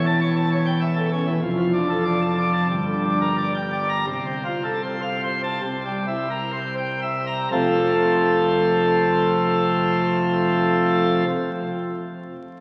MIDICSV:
0, 0, Header, 1, 2, 480
1, 0, Start_track
1, 0, Key_signature, -1, "major"
1, 0, Tempo, 614754
1, 1111, Time_signature, 4, 2, 24, 8
1, 1604, Tempo, 660793
1, 2564, Tempo, 731707
1, 3524, Tempo, 809717
1, 4004, Tempo, 883652
1, 4484, Tempo, 993377
1, 4964, Tempo, 1027397
1, 7336, End_track
2, 0, Start_track
2, 0, Title_t, "Pipe organ"
2, 0, Program_c, 0, 19
2, 0, Note_on_c, 0, 28, 109
2, 0, Note_on_c, 0, 40, 103
2, 47, Note_on_c, 0, 81, 114
2, 151, Note_off_c, 0, 81, 0
2, 166, Note_on_c, 0, 73, 91
2, 269, Note_off_c, 0, 73, 0
2, 285, Note_on_c, 0, 81, 75
2, 387, Note_off_c, 0, 81, 0
2, 403, Note_on_c, 0, 73, 90
2, 505, Note_off_c, 0, 73, 0
2, 514, Note_on_c, 0, 79, 93
2, 619, Note_off_c, 0, 79, 0
2, 631, Note_on_c, 0, 76, 88
2, 737, Note_off_c, 0, 76, 0
2, 749, Note_on_c, 0, 69, 78
2, 856, Note_off_c, 0, 69, 0
2, 873, Note_on_c, 0, 61, 85
2, 979, Note_off_c, 0, 61, 0
2, 994, Note_on_c, 0, 52, 81
2, 1083, Note_off_c, 0, 28, 0
2, 1084, Note_off_c, 0, 40, 0
2, 1095, Note_off_c, 0, 52, 0
2, 1110, Note_on_c, 0, 41, 109
2, 1111, Note_on_c, 0, 29, 98
2, 1236, Note_on_c, 0, 53, 73
2, 1344, Note_off_c, 0, 53, 0
2, 1353, Note_on_c, 0, 62, 80
2, 1464, Note_off_c, 0, 62, 0
2, 1477, Note_on_c, 0, 69, 75
2, 1589, Note_off_c, 0, 69, 0
2, 1600, Note_on_c, 0, 74, 83
2, 1705, Note_off_c, 0, 74, 0
2, 1718, Note_on_c, 0, 81, 105
2, 1823, Note_off_c, 0, 81, 0
2, 1841, Note_on_c, 0, 74, 83
2, 1944, Note_off_c, 0, 74, 0
2, 1948, Note_on_c, 0, 81, 83
2, 2045, Note_off_c, 0, 29, 0
2, 2045, Note_off_c, 0, 41, 0
2, 2052, Note_off_c, 0, 81, 0
2, 2077, Note_on_c, 0, 31, 92
2, 2077, Note_on_c, 0, 43, 90
2, 2202, Note_on_c, 0, 50, 69
2, 2307, Note_off_c, 0, 50, 0
2, 2322, Note_on_c, 0, 62, 74
2, 2429, Note_off_c, 0, 62, 0
2, 2444, Note_on_c, 0, 70, 80
2, 2553, Note_off_c, 0, 70, 0
2, 2563, Note_on_c, 0, 74, 83
2, 2665, Note_off_c, 0, 74, 0
2, 2675, Note_on_c, 0, 79, 77
2, 2779, Note_off_c, 0, 79, 0
2, 2791, Note_on_c, 0, 74, 84
2, 2897, Note_off_c, 0, 74, 0
2, 2904, Note_on_c, 0, 82, 118
2, 3004, Note_off_c, 0, 31, 0
2, 3004, Note_off_c, 0, 43, 0
2, 3008, Note_off_c, 0, 82, 0
2, 3021, Note_on_c, 0, 48, 87
2, 3022, Note_on_c, 0, 36, 89
2, 3143, Note_on_c, 0, 60, 65
2, 3255, Note_off_c, 0, 60, 0
2, 3267, Note_on_c, 0, 65, 80
2, 3380, Note_off_c, 0, 65, 0
2, 3391, Note_on_c, 0, 69, 62
2, 3506, Note_off_c, 0, 69, 0
2, 3514, Note_on_c, 0, 72, 73
2, 3622, Note_off_c, 0, 72, 0
2, 3632, Note_on_c, 0, 77, 71
2, 3741, Note_off_c, 0, 77, 0
2, 3755, Note_on_c, 0, 72, 73
2, 3864, Note_off_c, 0, 72, 0
2, 3877, Note_on_c, 0, 81, 94
2, 3975, Note_off_c, 0, 48, 0
2, 3976, Note_off_c, 0, 36, 0
2, 3983, Note_off_c, 0, 81, 0
2, 3999, Note_on_c, 0, 48, 83
2, 4001, Note_on_c, 0, 36, 77
2, 4114, Note_on_c, 0, 55, 58
2, 4221, Note_off_c, 0, 55, 0
2, 4233, Note_on_c, 0, 64, 69
2, 4343, Note_off_c, 0, 64, 0
2, 4358, Note_on_c, 0, 70, 68
2, 4470, Note_off_c, 0, 70, 0
2, 4480, Note_on_c, 0, 72, 76
2, 4584, Note_off_c, 0, 72, 0
2, 4599, Note_on_c, 0, 79, 68
2, 4705, Note_off_c, 0, 79, 0
2, 4718, Note_on_c, 0, 76, 64
2, 4827, Note_off_c, 0, 76, 0
2, 4840, Note_on_c, 0, 82, 95
2, 4942, Note_off_c, 0, 48, 0
2, 4943, Note_off_c, 0, 36, 0
2, 4945, Note_off_c, 0, 82, 0
2, 4960, Note_on_c, 0, 29, 82
2, 4960, Note_on_c, 0, 41, 73
2, 4960, Note_on_c, 0, 57, 64
2, 4961, Note_on_c, 0, 48, 58
2, 4961, Note_on_c, 0, 60, 66
2, 4961, Note_on_c, 0, 65, 65
2, 4961, Note_on_c, 0, 69, 63
2, 6697, Note_off_c, 0, 29, 0
2, 6697, Note_off_c, 0, 41, 0
2, 6697, Note_off_c, 0, 57, 0
2, 6698, Note_off_c, 0, 48, 0
2, 6698, Note_off_c, 0, 60, 0
2, 6698, Note_off_c, 0, 65, 0
2, 6698, Note_off_c, 0, 69, 0
2, 7336, End_track
0, 0, End_of_file